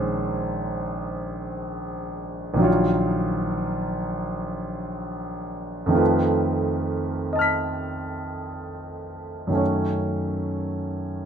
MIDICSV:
0, 0, Header, 1, 2, 480
1, 0, Start_track
1, 0, Tempo, 500000
1, 10804, End_track
2, 0, Start_track
2, 0, Title_t, "Grand piano"
2, 0, Program_c, 0, 0
2, 0, Control_c, 0, 64, 127
2, 0, Note_on_c, 0, 34, 48
2, 0, Note_on_c, 0, 51, 39
2, 0, Note_on_c, 0, 56, 39
2, 0, Note_on_c, 0, 61, 40
2, 0, Note_on_c, 0, 72, 39
2, 2421, Note_off_c, 0, 34, 0
2, 2435, Note_on_c, 0, 34, 49
2, 2444, Note_off_c, 0, 51, 0
2, 2459, Note_on_c, 0, 51, 40
2, 2486, Note_on_c, 0, 54, 42
2, 2494, Note_off_c, 0, 56, 0
2, 2507, Note_off_c, 0, 61, 0
2, 2510, Note_on_c, 0, 65, 43
2, 2517, Note_off_c, 0, 72, 0
2, 2535, Note_on_c, 0, 73, 40
2, 2580, Control_c, 0, 64, 0
2, 2709, Control_c, 0, 64, 127
2, 5628, Note_on_c, 0, 41, 48
2, 5637, Note_off_c, 0, 51, 0
2, 5651, Note_on_c, 0, 51, 41
2, 5659, Note_off_c, 0, 34, 0
2, 5672, Note_on_c, 0, 57, 39
2, 5684, Note_off_c, 0, 54, 0
2, 5687, Note_off_c, 0, 65, 0
2, 5702, Note_on_c, 0, 65, 38
2, 5708, Note_off_c, 0, 73, 0
2, 5725, Note_on_c, 0, 71, 38
2, 5778, Control_c, 0, 64, 0
2, 5922, Control_c, 0, 64, 127
2, 7035, Note_on_c, 0, 75, 34
2, 7061, Note_on_c, 0, 81, 34
2, 7093, Note_on_c, 0, 89, 34
2, 7118, Note_on_c, 0, 95, 35
2, 9094, Note_on_c, 0, 42, 37
2, 9104, Note_off_c, 0, 51, 0
2, 9109, Note_off_c, 0, 41, 0
2, 9119, Note_on_c, 0, 51, 33
2, 9124, Note_off_c, 0, 57, 0
2, 9138, Note_on_c, 0, 57, 31
2, 9146, Note_off_c, 0, 65, 0
2, 9157, Note_off_c, 0, 71, 0
2, 9164, Note_on_c, 0, 61, 34
2, 9175, Note_off_c, 0, 75, 0
2, 9188, Note_off_c, 0, 81, 0
2, 9191, Note_on_c, 0, 73, 31
2, 9204, Note_off_c, 0, 89, 0
2, 9217, Note_off_c, 0, 95, 0
2, 9235, Control_c, 0, 64, 0
2, 9435, Control_c, 0, 64, 127
2, 10804, Note_off_c, 0, 42, 0
2, 10804, Note_off_c, 0, 51, 0
2, 10804, Note_off_c, 0, 57, 0
2, 10804, Note_off_c, 0, 61, 0
2, 10804, Note_off_c, 0, 73, 0
2, 10804, End_track
0, 0, End_of_file